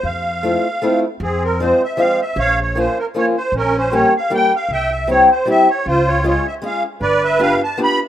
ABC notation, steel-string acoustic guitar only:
X:1
M:3/4
L:1/8
Q:"Swing" 1/4=156
K:F
V:1 name="Steel-string acoustic guitar"
z2 [A,CEF] z [A,CEF] z | [K:Fm] z2 [F,A,CF] z [F,A,CF] z | z2 [F,B,DF] z [F,B,DF] z | z2 [G,B,DG] z [G,B,DG] z |
z2 [G,C=EG] z [G,CEG] z | z2 [A,DFA] z [A,DFA] z | z2 [=B,=DFG] z [B,DFG] z |]